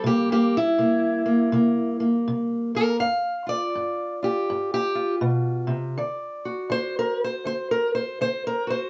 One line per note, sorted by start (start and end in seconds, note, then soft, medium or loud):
0.00 0.73 C3 medium
0.00 3.03 G3 soft
0.06 0.30 A#3 medium
0.06 0.30 G4 medium
0.32 0.55 A#3 medium
0.32 0.55 G4 medium
0.57 2.04 E4 loud
0.78 1.47 C3 medium
0.78 1.24 A#3 soft
1.26 1.52 A#3 soft
1.52 2.21 C3 medium
1.52 1.99 A#3 soft
2.00 2.74 A#3 medium
2.28 2.96 C3 medium
2.75 3.02 A#3 soft
2.75 3.00 A#4 medium
3.00 3.70 G2 medium
3.00 3.49 F5 medium
3.47 4.21 F4 soft
3.47 4.24 D5 loud
3.75 4.44 G2 medium
4.23 4.94 F4 soft
4.23 4.73 G4 medium
4.50 5.19 G2 medium
4.74 5.15 G4 loud
4.95 5.95 F4 soft
5.21 5.69 B2 medium
5.67 5.97 C3 medium
5.97 6.67 D3 medium
5.97 8.90 D5 soft
6.45 8.66 F#4 soft
6.70 7.40 D3 medium
6.70 6.97 C5 loud
6.99 7.23 A#4 medium
7.24 7.45 C5 medium
7.45 8.15 D3 medium
7.45 7.71 C5 medium
7.71 7.94 A#4 medium
7.95 8.20 C5 medium
8.21 8.90 D3 medium
8.21 8.46 C5 loud
8.47 8.70 A#4 medium
8.67 8.90 F#4 soft
8.67 8.90 C5 medium